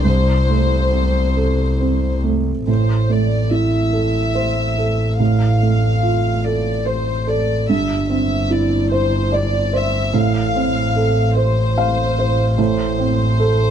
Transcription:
Already playing: double bass C2
0.04 felt piano C2, violin section C5
0.49 felt piano A3
0.91 felt piano C4
1.37 felt piano A4
1.80 felt piano C4
2.24 felt piano A3
2.67 double bass A1, felt piano A2, violin section C5
3.09 felt piano A3, violin section D5
3.50 felt piano E4, violin section E5
3.93 felt piano A4
4.35 felt piano C5
4.78 felt piano A4
5.19 felt piano A2, violin section F5
5.62 felt piano A3
6.03 felt piano F4
6.44 felt piano A4, violin section D5
6.86 felt piano C5, violin section C5
7.27 felt piano A4, violin section D5
7.69 double bass G1, felt piano G2, violin section E5
8.10 felt piano C4, violin section E5
8.50 felt piano E4, violin section D5
8.90 violin section C5, felt piano C5
9.32 felt piano D5, violin section D5
9.73 felt piano C5, violin section E5
10.13 double bass A1, felt piano A2, violin section F5
10.55 felt piano C4
10.96 felt piano A4
11.36 felt piano C5, violin section C5
11.78 felt piano F5
12.19 felt piano C5
12.58 felt piano A2, violin section C5
12.99 felt piano C4
13.40 felt piano A4

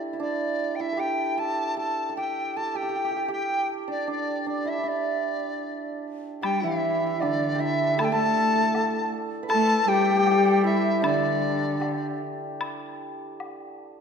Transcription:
Already playing: hammered dulcimer D4 E4 G4 A4
0.13 hammered dulcimer E4
0.20 hammered dulcimer D4, dizi D5
0.75 dizi G5
0.80 hammered dulcimer E4, dizi E5
0.92 hammered dulcimer A4
0.97 hammered dulcimer G4, dizi G5
1.38 hammered dulcimer A4, dizi A5
1.77 hammered dulcimer A4, dizi A5
2.09 hammered dulcimer A4
2.16 hammered dulcimer G4, dizi G5
2.56 hammered dulcimer A4, dizi A5
2.75 hammered dulcimer G4, dizi G5
2.83 hammered dulcimer G4
2.89 hammered dulcimer G4
2.96 hammered dulcimer G4
3.04 hammered dulcimer G4
3.11 hammered dulcimer G4
3.17 hammered dulcimer G4
3.28 hammered dulcimer G4
3.33 dizi G5
3.88 hammered dulcimer D4, dizi D5
4.07 hammered dulcimer D4, dizi D5
4.46 hammered dulcimer D4, dizi D5
4.65 hammered dulcimer E4, dizi E5
4.78 hammered dulcimer E4
4.83 hammered dulcimer D4
4.88 dizi D5
6.42 cello G3, xiao G4, hammered dulcimer G4, dizi G5, high woodblock
6.61 cello E3, xiao E4, hammered dulcimer E4, dizi E5
7.20 cello D3, xiao D4, hammered dulcimer D4, dizi D5, low woodblock
7.55 hammered dulcimer G4
7.60 hammered dulcimer E4, dizi E5
7.98 cello A3, hammered dulcimer A4, xiao A4, dizi A5, high woodblock
8.04 dizi G5
8.12 cello A3, hammered dulcimer A4, xiao A4, dizi A5
8.75 low woodblock
9.43 hammered dulcimer B4
9.48 cello A3, hammered dulcimer A4, xiao A4, dizi A5, high woodblock
9.87 cello G3, hammered dulcimer G4, xiao G4, dizi G5
9.94 hammered dulcimer G4
10.01 hammered dulcimer G4
10.10 hammered dulcimer G4
10.16 hammered dulcimer G4
10.24 hammered dulcimer G4, low woodblock
10.31 hammered dulcimer G4
10.45 hammered dulcimer G4
10.64 xiao E4, hammered dulcimer E4, dizi E5
11.02 cello D3, hammered dulcimer D4, xiao D4, dizi D5, high woodblock
11.72 hammered dulcimer A4
11.80 hammered dulcimer G4, low woodblock
12.61 high woodblock
13.40 low woodblock

